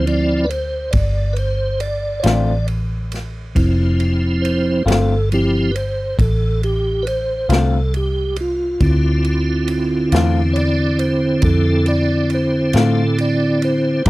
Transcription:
Already playing: fingered electric bass D2
0.06 tonewheel organ F3 C4 E4 D5, ride
0.45 tonewheel organ B4
0.50 tonewheel organ C5, ride
0.91 fingered electric bass G1, tonewheel organ D5, kick, ride
1.33 tonewheel organ B4, ride
1.39 tonewheel organ C5
1.80 tonewheel organ D5, ride
2.20 clean electric guitar F4, tonewheel organ C#5, ride
2.24 fingered electric bass A1, clean electric guitar D3 A3 C4, tonewheel organ D5, snare
2.68 ride
3.12 snare, ride
3.55 fingered electric bass F1, tonewheel organ F3 C4 E4, kick, ride
4.00 ride
4.42 tonewheel organ C5, ride
4.86 fingered electric bass G1, clean electric guitar D3 A3 C4 F4, tonewheel organ A4, ride
4.91 snare
5.32 tonewheel organ F3 C4 E4 G4, ride
5.71 tonewheel organ B4
5.75 tonewheel organ C5, ride
6.19 fingered electric bass A1, tonewheel organ A4, kick, ride
6.63 tonewheel organ G4, ride
7.03 tonewheel organ B4
7.07 tonewheel organ C5, ride
7.49 fingered electric bass C2, clean electric guitar D3 A3 C4 F4, snare, ride
7.54 tonewheel organ A4
7.94 tonewheel organ G4, ride
8.36 ride
8.41 tonewheel organ F4
8.80 fingered electric bass D2, tonewheel organ D3 C4 E4, kick, ride
9.24 ride
9.68 ride
10.12 fingered electric bass E2, clean electric guitar D3 A3 C4 F4, snare, ride
10.53 tonewheel organ C#5, ride
10.58 tonewheel organ D5
10.99 tonewheel organ C5, ride
11.42 fingered electric bass F2, tonewheel organ A4, kick, ride
11.86 tonewheel organ D5, ride
12.30 ride
12.34 tonewheel organ C5
12.73 fingered electric bass A2, clean electric guitar D3 A3 C4 F4, tonewheel organ A4, snare, ride
13.18 tonewheel organ D5, ride
13.62 tonewheel organ C5, ride
14.06 fingered electric bass G2, clean electric guitar G3 D4, kick, ride

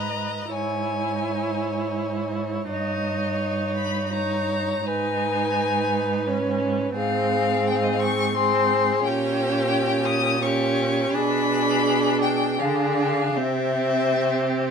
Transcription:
Already playing: cello G#2, viola B4, violin D#5 A#5
0.51 cello G#2, viola E4, violin C#5 G#5
2.69 cello G2, viola D#4, violin C#5 D#5
3.76 violin B5
4.06 violin B5
4.12 viola D#4, violin C#5 A#5
4.86 cello G#2, viola D#4, violin B4 G#5
6.27 viola C#4
6.96 cello G#2, viola C4, violin G#4 F5
7.67 violin G5
7.75 violin F5
7.83 violin D#5
7.92 violin F5
7.99 violin C#6
8.34 viola C4, violin G#4 C6
9.04 cello A#2, viola C#4, violin G4 G5
10.06 violin D#6
10.42 viola C#4, violin G4 C#6
11.12 cello B2, viola D4, violin G#4 B5
12.22 violin G5
12.58 cello D3, viola D4, violin G#4 F5
12.68 violin G5
12.75 violin F5
12.85 violin G5
12.93 violin F5
13.00 violin G5
13.08 violin F5
13.35 cello C3, viola C4, violin G4 E5

